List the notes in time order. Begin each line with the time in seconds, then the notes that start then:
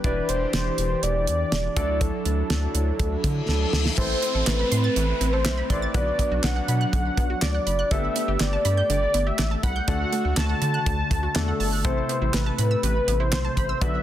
0.04 E1 E3 D4 E4 G4 B4 D5, kick, closed hi-hat
0.29 E1 C5, closed hi-hat
0.53 E1, snare, closed hi-hat
0.78 E1, closed hi-hat
1.03 E1 D5, closed hi-hat
1.27 E2, closed hi-hat
1.52 E1, snare, closed hi-hat
1.76 D2 F#3 D4 E4 F#4 A4 D5, kick, closed hi-hat
2.01 A4, kick, closed hi-hat
2.25 D2, closed hi-hat
2.50 D2, snare, closed hi-hat
2.75 D2, closed hi-hat
2.99 D2, kick, closed hi-hat, reverse cymbal
3.24 D3, kick, closed hi-hat
3.48 D2 A4, snare
3.73 D2, snare
3.85 snare
3.98 A1 E3 A3 C4 E4 A4 C5, kick, crash, downlifter
4.22 C4, closed hi-hat
4.35 A1 A4
4.47 A1 B4, snare, clap, closed hi-hat
4.59 B5
4.71 A2 C6, closed hi-hat
4.84 A6
4.96 A1 E3 B4, closed hi-hat
5.21 A1 C4, closed hi-hat
5.33 A4 C5
5.45 B1 E5, snare, clap, closed hi-hat
5.57 B5
5.70 A1 C4 E4 A4 B4 D5 C6, kick, closed hi-hat
5.82 A6
5.94 B1 D3 F#3 B3 D4 F#4 B4 D5, kick, closed hi-hat
6.19 B3, kick, closed hi-hat
6.31 B1 F#4
6.43 B1 F#5, snare, clap, closed hi-hat
6.56 F#5
6.68 B2 B5, closed hi-hat
6.81 F#6
6.93 B1 D3, kick, closed hi-hat
7.17 B1 B3, kick, closed hi-hat
7.30 F#4
7.42 D2 D5, snare, clap, closed hi-hat
7.54 F#5
7.67 F#1 B5, closed hi-hat
7.79 F#6
7.91 G1 D3 A3 B3 D4 G4 A4 E5, kick, closed hi-hat
8.16 B3, closed hi-hat
8.28 G1 G4
8.40 G1 D5, snare, clap, closed hi-hat
8.53 A5
8.65 G2 B5, closed hi-hat
8.77 G6
8.90 G1 D3 D5, closed hi-hat
9.14 G1 B3, closed hi-hat
9.27 G4 E5
9.39 A1 D5, snare, clap, closed hi-hat
9.51 A5
9.63 C2 F#5 B5, kick, closed hi-hat
9.76 G6
9.88 D2 D3 A3 D4 F#4 A4 F#5, kick, closed hi-hat
10.12 A3, closed hi-hat
10.25 D2 F#4
10.37 D2 A5, snare, clap, closed hi-hat
10.49 F#5
10.62 D3 A5, closed hi-hat
10.74 F#6
10.86 D2 D3, kick, closed hi-hat
11.11 D2 A3, kick, closed hi-hat
11.23 F#4
11.35 E2 A3 D4 F#4 A4 D5, snare, clap, closed hi-hat
11.48 F#5
11.60 G1 A5, open hi-hat
11.72 F#6
11.85 A1 C3 A3 C4 E4 A4 C5, kick, closed hi-hat
12.09 B3, closed hi-hat
12.22 A1 E4
12.34 A1 B4, snare, clap, closed hi-hat
12.46 A5
12.58 A2 B5, closed hi-hat
12.71 E6
12.83 A1 C3 B4, closed hi-hat
13.08 A1 B3, closed hi-hat
13.20 E4 C5
13.32 B1 C5, snare, clap, closed hi-hat
13.44 A5
13.57 A1 B5, kick, closed hi-hat
13.69 E6
13.81 B1 D3 F#3 B3 D4 F#4 B4 E5, kick, closed hi-hat